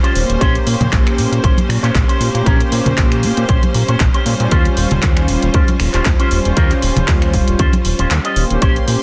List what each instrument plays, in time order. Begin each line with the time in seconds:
Already playing: string section G3 C#4 F4 C5
0.03 clean electric guitar C#4 F4 G4 C5, closed hi-hat
0.14 analog synth bass D#1, analog synth pad A#3 C#4 G4 C5, open hi-hat
0.29 analog synth bass D#1, closed hi-hat
0.40 analog synth bass A#1, string section A#3 G4, clean electric guitar C#4 G4 C5, kick, closed hi-hat
0.55 closed hi-hat
0.66 analog synth bass A#2, muted clean electric guitar stroke, open hi-hat
0.80 analog synth bass A#2, closed hi-hat, high conga, low conga
0.92 analog synth bass A#1, finger snap, kick, clap, closed hi-hat
1.07 finger snap, closed hi-hat
1.17 analog synth bass A#2, analog synth pad A#3 C#4 G4 C5, open hi-hat
1.32 analog synth bass A#2, closed hi-hat
1.43 analog synth bass A#1, clean electric guitar C#4 G4 C5, kick, closed hi-hat
1.58 closed hi-hat, high conga
1.69 analog synth bass A#2, finger snap, muted clean electric guitar stroke, open hi-hat
1.82 analog synth bass A#2, clean electric guitar C#4 G4 C5, clap, closed hi-hat
1.95 analog synth bass A#1, kick, clap, closed hi-hat
2.08 clean electric guitar C#4 G4 C5, closed hi-hat
2.20 analog synth bass A#2, analog synth pad A#3 C#4 G4 C5, open hi-hat
2.35 analog synth bass A#2, closed hi-hat
2.45 analog synth bass A#1, clean electric guitar C#4 G4 A#4, kick, closed hi-hat
2.60 closed hi-hat
2.71 analog synth bass A#2, muted clean electric guitar stroke, open hi-hat
2.85 analog synth bass A#2, closed hi-hat, high conga, low conga
2.98 analog synth bass A#1, finger snap, kick, clap, closed hi-hat
3.12 finger snap, closed hi-hat
3.23 analog synth bass A#2, analog synth pad A#3 C#4 G4 C5, open hi-hat
3.37 analog synth bass A#2, closed hi-hat
3.48 analog synth bass A#1, clean electric guitar C#4 G4 C5, kick, closed hi-hat
3.63 closed hi-hat, high conga
3.74 analog synth bass A#2, muted clean electric guitar stroke, open hi-hat
3.88 analog synth bass A#2, clean electric guitar C#4 G4 C5, closed hi-hat
4.00 analog synth bass A#1, kick, clap, closed hi-hat
4.14 clean electric guitar C#4 G4 C5, closed hi-hat
4.25 analog synth bass A#2, analog synth pad G3 C#4 F4 C5, open hi-hat
4.40 analog synth bass A#2, closed hi-hat
4.51 analog synth bass D#2, string section G3 F4, clean electric guitar C#4 F4 G4 C5, kick, closed hi-hat
4.65 closed hi-hat
4.77 analog synth bass D#1, muted clean electric guitar stroke, open hi-hat
4.91 analog synth bass D#1, closed hi-hat, high conga, low conga
5.02 analog synth bass D#2, finger snap, kick, clap, closed hi-hat
5.17 finger snap, closed hi-hat
5.28 analog synth bass D#1, analog synth pad G3 C#4 F4 C5, open hi-hat
5.42 analog synth bass D#1, closed hi-hat
5.54 analog synth bass D#2, clean electric guitar C#4 F4 G4 C5, kick, closed hi-hat
5.68 closed hi-hat, high conga
5.80 analog synth bass D#1, finger snap, muted clean electric guitar stroke, open hi-hat
5.94 analog synth bass D#1, clean electric guitar C#4 F4 G4 C5, clap, closed hi-hat
6.05 analog synth bass D#2, kick, clap, closed hi-hat
6.19 clean electric guitar C#4 F4 G4 C5, closed hi-hat
6.30 analog synth bass D#1, analog synth pad G3 C#4 F4 C5, open hi-hat
6.45 analog synth bass D#1, closed hi-hat
6.56 analog synth bass D#2, clean electric guitar C#4 F4 G4 A#4, kick, closed hi-hat
6.71 clap, closed hi-hat
6.82 analog synth bass D#1, muted clean electric guitar stroke, open hi-hat
6.96 analog synth bass D#1, closed hi-hat, high conga, low conga
7.08 analog synth bass D#2, finger snap, kick, clap, closed hi-hat
7.22 finger snap, closed hi-hat
7.33 analog synth bass D#1, analog synth pad G3 C#4 F4 C5, kick, open hi-hat
7.48 analog synth bass D#1, closed hi-hat
7.59 analog synth bass D#2, clean electric guitar C#4 F4 G4 C5, kick, closed hi-hat
7.73 closed hi-hat, high conga
7.85 analog synth bass D#1, muted clean electric guitar stroke, open hi-hat
7.99 analog synth bass D#1, clean electric guitar C#4 F4 G4 C5, closed hi-hat
8.11 analog synth bass D#2, clap, closed hi-hat
8.25 clean electric guitar C#4 F4 G4 D#5, closed hi-hat
8.35 analog synth bass D#1, analog synth pad A#3 C#4 G4 C5, open hi-hat
8.50 analog synth bass D#1, closed hi-hat
8.61 analog synth bass A#1, string section A#3 C#4 G4 C6, clean electric guitar C#4 G4 C5, kick, closed hi-hat
8.76 closed hi-hat
8.87 analog synth bass A#2, muted clean electric guitar stroke, open hi-hat